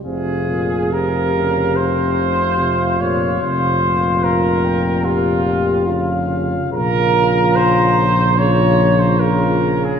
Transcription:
<<
  \new Staff \with { instrumentName = "Cornet" } { \time 4/4 \key bes \dorian \tempo 4 = 72 f''1~ | f''4 f''8 g''8 f''4 f''4 | bes''2 bes''4 bes''4 | }
  \new Staff \with { instrumentName = "Flugelhorn" } { \time 4/4 \key bes \dorian aes'4 bes'4 c''4. des''8 | c''4 bes'4 f'4.~ f'16 r16 | bes'4 c''4 des''8. c''16 bes'8. aes'16 | }
  \new Staff \with { instrumentName = "Euphonium" } { \time 4/4 \key bes \dorian f'4 g'2 f'4 | f'2 g'8 g'8 f'4 | f'2 f'4 f'4 | }
  \new Staff \with { instrumentName = "Trombone" } { \clef bass \time 4/4 \key bes \dorian c8 bes,8 c8 des8 c4 c8 bes,8 | c8 bes,2~ bes,8 des4 | des2 des4 des4 | }
  \new Staff \with { instrumentName = "Tuba" } { \clef bass \time 4/4 \key bes \dorian f,,1 | f,,1 | bes,,1 | }
>>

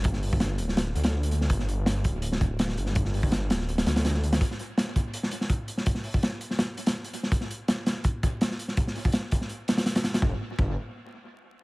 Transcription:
<<
  \new Staff \with { instrumentName = "Detuned saw bass" } { \clef bass \time 4/4 \key c \mixolydian \tempo 4 = 165 g,,4. d,,4 d,4. | g,,4. d,,2 g,,8~ | g,,4. d,,4 d,4. | r1 |
r1 | r1 | r1 | g,,8 r8 g,,8 r2 r8 | }
  \new DrumStaff \with { instrumentName = "Drums" } \drummode { \time 4/4 <hh bd>16 sn16 hho16 bd16 <hh sn>8 hh16 sn16 <hh sn>8 hh16 <hh sn>16 r16 hh16 hh16 sn16 | <hh bd>16 sn16 hh8 <hh sn>8 <hh bd>8 hh16 sn16 <hh bd>8 <hh sn>16 sn16 hh16 sn16 | <hh bd>16 sn16 hho16 bd16 <hh sn>8 <hh sn>16 sn16 hh16 <hh sn>16 <hh sn>16 <hh sn>16 <hh sn>16 sn16 hh16 <hh sn>16 | <hh bd>16 sn16 hh8 <hh sn>8 <hh bd>8 hh16 sn16 hh16 sn16 <hh bd>8 hh16 sn16 |
<hh bd>16 sn16 hho16 bd16 <hh sn>8 hh16 sn16 <hh sn>8 hh16 <hh sn>16 r16 hh16 hh16 sn16 | <hh bd>16 sn16 hh8 <hh sn>8 <hh sn>8 <hh bd>8 <hh bd>8 <hh sn>16 sn16 hh16 sn16 | <hh bd>16 sn16 hho16 bd16 <hh sn>8 <hh bd>16 sn16 hh8 <hh sn>16 <hh sn>16 <hh sn>16 <hh sn>16 <hh sn>16 <hh sn>16 | bd4 bd4 r4 r4 | }
>>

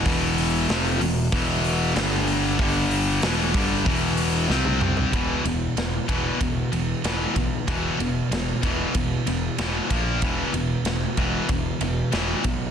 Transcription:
<<
  \new Staff \with { instrumentName = "Distorted electric guitar" } { \clef bass \time 4/4 \key e \minor \tempo 4 = 94 <e, b, e>4 <f, c f>8 <e, b,>8 <e, b, e>4 <g, d g>4 | <g, d g>4 <e, b, e>8 <g, d g>8 <e, b, e>4 <c g c'>4 | <e, b, e>8 <e, b,>8 <e, b,>8 <e, b, e>8 <e, b,>8 <e, b,>8 <e, b, e>8 <e, b,>8 | <e, b, e>8 <e, b,>8 <e, b,>8 <e, b, e>8 <e, b,>8 <e, b,>8 <e, b, e>8 <ais, eis ais>8 |
<e, b, e>8 <e, b,>8 <e, b,>8 <e, b, e>8 <e, b,>8 <e, b,>8 <e, b, e>8 <e, b,>8 | }
  \new Staff \with { instrumentName = "Distorted electric guitar" } { \clef bass \time 4/4 \key e \minor <e, b, e>4 <f, c f>8 <e, b,>8 <e, b, e>4 <g, d g>4 | <g, d g>4 <e, b, e>8 <g, d g>8 <e, b, e>4 <c g c'>4 | <e, b, e>8 <e, b,>8 <e, b,>8 <e, b, e>8 <e, b,>8 <e, b,>8 <e, b, e>8 <e, b,>8 | <e, b, e>8 <e, b,>8 <e, b,>8 <e, b, e>8 <e, b,>8 <e, b,>8 <e, b, e>8 <ais, eis ais>8 |
<e, b, e>8 <e, b,>8 <e, b,>8 <e, b, e>8 <e, b,>8 <e, b,>8 <e, b, e>8 <e, b,>8 | }
  \new Staff \with { instrumentName = "Picked electric bass" } { \clef bass \time 4/4 \key e \minor e,,4 f,,8 e,,8 e,,4 g,,4 | g,,4 e,,8 g,,8 e,,4 c,4 | e,,8 e,,8 e,,8 e,,8 e,,8 e,,8 e,,8 b,,8 | e,,8 e,,8 e,,8 e,,8 e,,8 e,,8 e,,8 ais,,8 |
e,,8 e,,8 e,,8 e,,8 e,,8 e,,8 e,,8 b,,8 | }
  \new DrumStaff \with { instrumentName = "Drums" } \drummode { \time 4/4 <hho bd>8 hho8 <hho sn>8 hho8 <hho bd>8 hho8 <hho sn>8 hho8 | <hho bd>8 hho8 <hho sn>8 <hho bd>8 <hho bd>8 hho8 sn16 tommh16 toml16 tomfh16 | <bd cymr>8 cymr8 <cymr sn>8 <bd cymr>8 <bd cymr>8 cymr8 <cymr sn>8 <bd cymr>8 | <bd cymr>8 cymr8 <cymr sn>8 <bd cymr>8 <bd cymr>8 cymr8 <cymr sn>8 <bd cymr>8 |
<bd cymr>8 cymr8 <cymr sn>8 <bd cymr>8 <bd cymr>8 cymr8 <cymr sn>8 <bd cymr>8 | }
>>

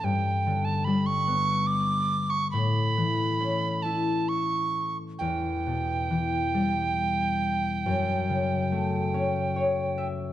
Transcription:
<<
  \new Staff \with { instrumentName = "Tin whistle" } { \time 3/4 \key e \dorian \tempo 4 = 69 g''8. a''16 b''16 cis'''8. d'''8. cis'''16 | b''4. a''8 cis'''8. r16 | g''2.~ | g''2~ g''8. r16 | }
  \new Staff \with { instrumentName = "Harp" } { \time 3/4 \key e \dorian r2. | r2. | r2. | r2 cis''8 e''8 | }
  \new Staff \with { instrumentName = "Harp" } { \clef bass \time 3/4 \key e \dorian g,8 d8 g8 b4. | a,8 e8 cis'8 e'4. | e,8 b,8 e8 g4. | fis,8 cis8 a8 cis'4. | }
>>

